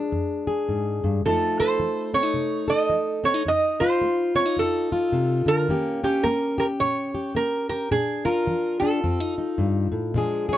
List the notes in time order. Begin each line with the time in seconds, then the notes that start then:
Already playing: G#3 D4 G#4
0.12 F2
0.47 G#4
0.69 G#2
1.04 G2
1.25 F2 F3 A3 D#4 A4
1.60 A4 C5
1.80 F3
2.14 C4 C#5
2.23 D#4
2.34 C3
2.68 A4 D#5
2.89 F3
3.24 C4 C#5
3.34 D#4
3.46 F2 D#5
3.80 F4 C5
4.01 A3
4.35 C4 C#5
4.46 D#4
4.57 F2 A4
4.92 F4
5.12 C3
5.46 D3 A#4
5.69 D#3 A#3 C#4 G4
6.04 C#4 G4
6.23 A#3 A#4
6.58 G4 A#4
6.80 A#2 C#5
7.15 G4
7.35 A#3 A#4
7.69 G4 A#4
7.91 A#2 D4 G#4
8.25 F4 A#4
8.47 F3
8.80 D4 A4
9.04 F2 C4
9.20 D#4
9.38 D#4
9.58 G2
9.92 A2
10.14 A#2 F3 G#3 D4 G#4
10.49 G#4 C#5